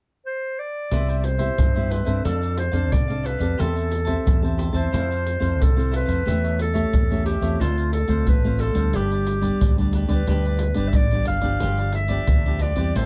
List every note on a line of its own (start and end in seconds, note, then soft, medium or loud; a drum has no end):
0.26 0.60 C5 medium
0.59 1.18 D5 medium
0.91 1.48 C2 medium
0.91 1.55 C3 medium
0.91 1.36 B3 medium
0.91 1.07 E4 medium
0.91 1.36 E4 medium
0.91 1.36 G4 medium
0.91 1.07 B4 medium
0.91 1.07 C5 medium
0.91 1.07 E5 medium
0.91 pandeiro medium
0.91 shaker medium
0.91 surdo medium
1.09 1.22 B4 soft
1.09 1.23 C5 soft
1.09 1.23 E5 soft
1.09 pandeiro soft
1.09 shaker soft
1.18 1.26 D5 medium
1.23 1.92 C5 medium
1.23 muted cavaquinho stroke soft
1.23 pandeiro medium
1.38 1.68 B3 medium
1.38 1.69 E4 medium
1.38 1.69 G4 medium
1.38 1.72 C5 medium
1.38 1.72 E5 medium
1.38 pandeiro medium
1.38 shaker medium
1.38 surdo soft
1.58 2.01 G2 medium
1.58 2.22 G2 soft
1.58 pandeiro medium
1.58 shaker medium
1.58 surdo loud
1.75 2.04 B3 medium
1.75 2.04 E4 medium
1.75 2.04 G4 medium
1.75 1.89 B4 soft
1.75 1.90 C5 soft
1.75 1.90 E5 soft
1.75 pandeiro soft
1.75 shaker soft
1.90 2.06 E4 soft
1.90 2.06 B4 soft
1.90 2.24 B4 medium
1.90 2.05 C5 soft
1.90 2.04 E5 soft
1.90 pandeiro medium
1.90 shaker medium
2.05 2.22 G2 medium
2.05 2.69 C4 medium
2.05 2.69 D4 medium
2.05 2.69 A4 medium
2.05 2.23 B4 medium
2.05 2.23 C5 medium
2.05 2.22 E5 medium
2.05 pandeiro medium
2.05 shaker medium
2.05 surdo soft
2.24 2.68 F2 medium
2.24 2.89 F3 soft
2.24 2.40 D4 medium
2.24 2.56 A4 medium
2.24 2.40 A4 medium
2.24 2.41 D5 medium
2.24 2.40 F5 medium
2.24 pandeiro medium
2.24 shaker medium
2.24 surdo medium
2.41 2.55 A4 soft
2.41 2.56 D5 soft
2.41 2.56 F5 soft
2.41 pandeiro soft
2.41 shaker soft
2.56 2.94 C5 medium
2.56 muted cavaquinho stroke soft
2.56 pandeiro medium
2.56 shaker medium
2.72 2.91 F2 medium
2.72 3.02 C4 medium
2.72 3.02 D4 medium
2.72 3.02 A4 medium
2.72 3.07 A4 soft
2.72 3.06 D5 medium
2.72 3.05 F5 medium
2.72 pandeiro medium
2.72 shaker medium
2.72 surdo soft
2.91 3.34 C2 medium
2.91 3.56 C3 medium
2.91 3.27 D5 medium
2.91 pandeiro medium
2.91 shaker medium
2.91 surdo medium
3.08 3.37 C4 medium
3.08 3.38 D4 medium
3.08 3.22 A4 soft
3.08 3.37 A4 medium
3.08 3.23 D5 soft
3.08 3.24 F5 soft
3.08 pandeiro soft
3.08 shaker soft
3.23 3.39 D4 soft
3.23 3.39 A4 soft
3.23 3.62 B4 medium
3.23 3.38 D5 soft
3.23 3.37 F5 medium
3.23 pandeiro medium
3.23 shaker medium
3.38 3.55 F2 medium
3.38 4.03 C4 medium
3.38 4.03 G4 medium
3.38 3.57 A4 medium
3.38 4.03 A4 medium
3.38 3.56 D5 medium
3.38 3.56 F5 medium
3.38 pandeiro medium
3.38 shaker medium
3.38 surdo soft
3.58 4.16 E2 medium
3.58 4.22 E3 medium
3.58 3.74 G4 medium
3.58 4.49 A4 medium
3.58 3.74 C5 medium
3.58 3.74 E5 medium
3.58 3.74 A5 medium
3.58 pandeiro medium
3.58 shaker medium
3.58 surdo medium
3.75 3.89 C5 soft
3.75 3.89 E5 soft
3.75 3.89 A5 soft
3.75 pandeiro soft
3.75 shaker soft
3.90 muted cavaquinho stroke soft
3.90 pandeiro medium
3.90 shaker medium
4.05 4.36 C4 medium
4.05 4.36 G4 medium
4.05 4.36 A4 medium
4.05 4.40 C5 medium
4.05 4.40 E5 medium
4.05 4.39 A5 medium
4.05 pandeiro medium
4.05 shaker medium
4.05 surdo soft
4.25 4.68 E2 medium
4.25 4.89 E3 medium
4.25 pandeiro medium
4.25 shaker medium
4.25 surdo loud
4.42 4.70 C4 medium
4.42 4.70 G4 medium
4.42 4.71 A4 medium
4.42 4.57 C5 soft
4.42 4.58 E5 soft
4.42 4.58 A5 soft
4.42 pandeiro soft
4.42 shaker soft
4.57 4.74 G4 soft
4.57 4.73 C5 soft
4.57 4.73 E5 soft
4.57 4.72 A5 soft
4.57 pandeiro medium
4.72 4.88 E2 medium
4.72 5.36 C4 medium
4.72 5.36 E4 medium
4.72 5.36 A4 medium
4.72 4.91 C5 medium
4.72 5.63 C5 medium
4.72 4.90 E5 medium
4.72 4.90 A5 medium
4.72 pandeiro medium
4.72 shaker medium
4.72 surdo soft
4.91 5.35 F2 loud
4.91 5.55 F3 soft
4.91 5.08 E4 medium
4.91 5.08 A4 medium
4.91 5.09 C5 medium
4.91 5.09 F5 medium
4.91 pandeiro medium
4.91 shaker medium
4.91 surdo medium
5.11 5.25 A4 soft
5.11 5.25 C5 soft
5.11 5.25 F5 soft
5.11 pandeiro soft
5.11 shaker soft
5.25 muted cavaquinho stroke soft
5.25 pandeiro medium
5.25 shaker medium
5.40 5.60 F2 medium
5.40 5.69 C4 medium
5.40 5.69 E4 medium
5.40 5.70 A4 medium
5.40 5.74 A4 medium
5.40 5.74 C5 medium
5.40 5.73 F5 medium
5.40 pandeiro medium
5.40 shaker medium
5.40 surdo soft
5.59 6.02 C2 medium
5.59 6.23 C3 medium
5.59 5.94 A4 medium
5.59 pandeiro medium
5.59 shaker medium
5.59 surdo medium
5.76 6.21 C4 medium
5.76 6.21 E4 medium
5.76 6.22 A4 medium
5.76 5.91 A4 soft
5.76 5.91 C5 soft
5.76 5.92 F5 soft
5.76 pandeiro soft
5.76 shaker soft
5.91 6.07 E4 soft
5.91 6.07 A4 soft
5.91 6.06 C5 medium
5.91 6.04 F5 medium
5.91 pandeiro medium
5.91 shaker medium
5.95 6.57 B4 loud
6.06 6.23 F2 medium
6.06 6.24 A4 medium
6.06 6.24 C5 medium
6.06 6.23 F5 medium
6.06 pandeiro medium
6.06 shaker medium
6.06 surdo soft
6.25 6.83 E2 medium
6.25 6.89 E3 medium
6.25 6.71 A3 medium
6.25 6.71 C#4 medium
6.25 6.41 G4 medium
6.25 6.71 G4 medium
6.25 6.42 A4 medium
6.25 6.42 C#5 medium
6.25 6.42 E5 medium
6.25 pandeiro medium
6.25 shaker medium
6.25 surdo medium
6.44 6.58 A4 soft
6.44 6.58 C#5 soft
6.44 6.58 E5 soft
6.44 pandeiro soft
6.44 shaker soft
6.58 7.23 A4 medium
6.58 muted cavaquinho stroke soft
6.58 pandeiro medium
6.58 shaker medium
6.73 7.03 A3 medium
6.73 7.03 C#4 medium
6.73 7.03 G4 medium
6.73 7.08 A4 medium
6.73 7.08 C#5 medium
6.73 7.07 E5 medium
6.73 pandeiro medium
6.73 shaker medium
6.73 surdo soft
6.93 7.36 E2 medium
6.93 7.57 E3 medium
6.93 pandeiro medium
6.93 shaker medium
6.93 surdo loud
7.10 7.38 A3 medium
7.10 7.39 C#4 medium
7.10 7.39 G4 medium
7.10 7.25 A4 soft
7.10 7.26 C#5 soft
7.10 7.25 E5 medium
7.10 pandeiro soft
7.10 shaker soft
7.26 7.61 G4 medium
7.26 7.41 G4 soft
7.26 7.42 A4 soft
7.26 7.41 C#5 soft
7.26 7.39 E5 medium
7.26 pandeiro medium
7.41 7.56 E2 medium
7.41 8.04 A3 medium
7.41 8.04 C4 medium
7.41 8.04 F4 medium
7.41 7.58 A4 medium
7.41 7.58 C#5 medium
7.41 7.57 E5 medium
7.41 pandeiro medium
7.41 shaker medium
7.41 surdo soft
7.60 8.03 D2 medium
7.60 8.24 D3 soft
7.60 7.75 D4 medium
7.60 7.92 F4 medium
7.60 7.76 A4 medium
7.60 7.76 C5 medium
7.60 7.76 F5 medium
7.60 pandeiro medium
7.60 shaker medium
7.60 surdo medium
7.78 7.92 A4 soft
7.78 7.92 C5 soft
7.78 7.93 F5 soft
7.78 pandeiro soft
7.78 shaker soft
7.93 8.24 A4 medium
7.93 muted cavaquinho stroke soft
7.93 pandeiro medium
8.08 8.27 D2 medium
8.08 8.37 A3 medium
8.08 8.37 C4 medium
8.08 8.37 F4 medium
8.08 8.43 A4 medium
8.08 8.42 C5 medium
8.08 8.41 F5 medium
8.08 pandeiro medium
8.08 shaker medium
8.08 surdo soft
8.27 8.69 A1 medium
8.27 8.91 A2 soft
8.27 8.62 B4 medium
8.27 pandeiro medium
8.27 shaker medium
8.27 surdo medium
8.44 8.72 A3 medium
8.44 8.72 C4 medium
8.44 8.72 F4 medium
8.44 8.60 A4 soft
8.44 8.60 C5 soft
8.44 8.60 F5 soft
8.44 pandeiro soft
8.44 shaker soft
8.59 8.76 D4 soft
8.59 8.97 A4 medium
8.59 8.76 A4 medium
8.59 8.75 C5 soft
8.59 8.74 F5 medium
8.59 pandeiro medium
8.73 8.90 D2 medium
8.73 9.37 G3 medium
8.73 9.37 B3 medium
8.73 9.37 D4 medium
8.73 8.92 A4 medium
8.73 8.92 C5 medium
8.73 8.91 F5 medium
8.73 pandeiro medium
8.73 shaker medium
8.73 surdo soft
8.93 9.51 G1 medium
8.93 9.57 G2 medium
8.93 9.09 D4 medium
8.93 9.10 G4 medium
8.93 9.85 G4 loud
8.93 9.10 B4 medium
8.93 9.10 D5 medium
8.93 pandeiro medium
8.93 shaker medium
8.93 surdo medium
9.11 9.26 G4 soft
9.11 9.26 B4 soft
9.11 9.27 D5 soft
9.11 pandeiro soft
9.11 shaker soft
9.27 muted cavaquinho stroke soft
9.27 pandeiro medium
9.27 shaker medium
9.41 9.70 G3 medium
9.41 9.71 B3 medium
9.41 9.71 D4 medium
9.41 9.76 G4 medium
9.41 9.75 B4 medium
9.41 9.75 D5 medium
9.41 pandeiro medium
9.41 shaker medium
9.41 surdo soft
9.59 10.03 D2 medium
9.59 10.24 D3 medium
9.59 pandeiro medium
9.59 shaker medium
9.59 surdo loud
9.77 10.05 G3 medium
9.77 10.05 B3 medium
9.77 10.05 D4 medium
9.77 9.93 G4 soft
9.77 9.93 B4 soft
9.77 9.93 D5 soft
9.77 pandeiro soft
9.77 shaker soft
9.93 10.09 D4 soft
9.93 10.10 G4 soft
9.93 10.08 B4 medium
9.93 10.07 D5 soft
9.93 pandeiro medium
10.07 10.24 D2 medium
10.07 10.20 G3 medium
10.07 10.20 B3 medium
10.07 10.20 D4 medium
10.07 10.26 G4 medium
10.07 10.26 B4 medium
10.07 10.89 B4 medium
10.07 10.25 D5 medium
10.07 pandeiro medium
10.07 shaker medium
10.07 surdo soft
10.27 10.70 D2 medium
10.27 10.91 G2 medium
10.27 10.72 G3 soft
10.27 10.72 B3 soft
10.27 10.43 D4 medium
10.27 10.72 D4 medium
10.27 10.43 G4 medium
10.27 10.44 B4 medium
10.27 10.44 D5 medium
10.27 pandeiro medium
10.27 shaker medium
10.27 surdo medium
10.45 10.61 G4 soft
10.45 10.61 B4 soft
10.45 10.61 D5 soft
10.45 pandeiro soft
10.45 shaker soft
10.59 muted cavaquinho stroke soft
10.59 pandeiro medium
10.74 10.93 G1 medium
10.74 11.04 G3 medium
10.74 11.04 B3 medium
10.74 11.04 D4 medium
10.74 11.10 G4 medium
10.74 11.10 B4 medium
10.74 11.09 D5 medium
10.74 pandeiro medium
10.74 shaker medium
10.74 surdo soft
10.88 10.97 E5 medium
10.93 11.25 A1 medium
10.93 11.58 D3 medium
10.93 11.27 D5 medium
10.93 pandeiro medium
10.93 shaker medium
10.93 surdo loud
11.11 11.39 G3 medium
11.11 11.40 B3 medium
11.11 11.40 D4 medium
11.11 11.26 G4 soft
11.11 11.27 B4 soft
11.11 11.27 D5 medium
11.11 pandeiro soft
11.11 shaker soft
11.25 11.58 G1 medium
11.25 11.43 D4 medium
11.25 11.43 G4 medium
11.25 11.42 B4 medium
11.25 11.41 D5 soft
11.25 11.91 F5 loud
11.25 pandeiro medium
11.25 shaker medium
11.42 12.05 F3 medium
11.42 12.05 B3 medium
11.42 12.05 D4 medium
11.42 11.60 G4 medium
11.42 11.59 B4 medium
11.42 11.59 D5 medium
11.42 pandeiro medium
11.42 shaker medium
11.42 surdo soft
11.60 12.18 G1 medium
11.60 12.25 G2 medium
11.60 11.77 F4 medium
11.60 11.77 G4 medium
11.60 11.77 B4 medium
11.60 11.77 D5 medium
11.60 pandeiro medium
11.60 shaker medium
11.60 surdo medium
11.78 11.93 G4 soft
11.78 11.94 B4 soft
11.78 11.94 D5 soft
11.78 pandeiro soft
11.78 shaker soft
11.92 12.63 E5 medium
11.92 muted cavaquinho stroke soft
11.92 pandeiro medium
12.08 12.38 F3 medium
12.08 12.38 B3 medium
12.08 12.38 D4 medium
12.08 12.43 G4 medium
12.08 12.43 B4 medium
12.08 12.42 D5 medium
12.08 pandeiro medium
12.08 shaker medium
12.08 surdo soft
12.27 12.71 D2 medium
12.27 12.92 D3 medium
12.27 pandeiro medium
12.27 shaker medium
12.27 surdo loud
12.46 12.73 F3 medium
12.46 12.74 B3 medium
12.46 12.74 D4 medium
12.46 12.60 G4 soft
12.46 12.61 B4 soft
12.46 12.61 D5 soft
12.46 pandeiro soft
12.46 shaker soft
12.59 12.76 F4 soft
12.59 12.77 G4 soft
12.59 12.76 B4 soft
12.59 12.98 D5 medium
12.59 12.75 D5 soft
12.59 pandeiro medium
12.74 12.91 E2 medium
12.74 13.06 G3 medium
12.74 13.06 C4 medium
12.74 13.06 E4 medium
12.74 12.93 B4 medium
12.74 12.93 D5 medium
12.74 pandeiro medium
12.74 shaker medium
12.74 surdo soft
12.79 12.94 G4 medium
12.95 13.06 A1 medium
12.95 13.06 A2 soft
12.95 13.06 G4 medium
12.95 13.06 C5 medium
12.95 13.06 E5 medium
12.95 13.06 A5 medium
12.95 pandeiro medium
12.95 shaker medium
12.95 surdo medium